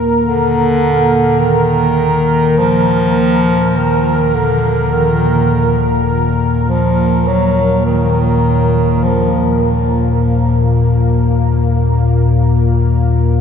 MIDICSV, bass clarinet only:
0, 0, Header, 1, 2, 480
1, 0, Start_track
1, 0, Tempo, 500000
1, 12872, End_track
2, 0, Start_track
2, 0, Title_t, "Bass clarinet"
2, 0, Program_c, 0, 71
2, 220, Note_on_c, 0, 50, 93
2, 1341, Note_on_c, 0, 51, 91
2, 1355, Note_off_c, 0, 50, 0
2, 2478, Note_on_c, 0, 53, 103
2, 2492, Note_off_c, 0, 51, 0
2, 3612, Note_on_c, 0, 51, 79
2, 3627, Note_off_c, 0, 53, 0
2, 4166, Note_on_c, 0, 50, 73
2, 4181, Note_off_c, 0, 51, 0
2, 4729, Note_on_c, 0, 51, 83
2, 4743, Note_off_c, 0, 50, 0
2, 5851, Note_off_c, 0, 51, 0
2, 6404, Note_on_c, 0, 53, 83
2, 6984, Note_on_c, 0, 54, 85
2, 6999, Note_off_c, 0, 53, 0
2, 7544, Note_off_c, 0, 54, 0
2, 7548, Note_on_c, 0, 51, 83
2, 8674, Note_on_c, 0, 53, 72
2, 8689, Note_off_c, 0, 51, 0
2, 9236, Note_off_c, 0, 53, 0
2, 12872, End_track
0, 0, End_of_file